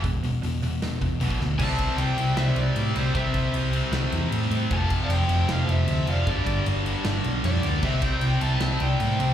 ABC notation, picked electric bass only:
X:1
M:4/4
L:1/8
Q:1/4=154
K:C
V:1 name="Picked electric bass" clef=bass
E,,, E,,, E,,, E,,, E,,, E,,, B,,, D,, | C,,2 C,, C,, C,, C,, A,, C,, | C,, C,, C,,2 C,, E,, A,, A,, | F,,,2 F,,, F,,, F,,, F,,, D,, F,,, |
G,,, G,,, G,,,2 G,,, B,,, F,, D,, | C,,2 C,, C,, C,, C,, A,, C,, |]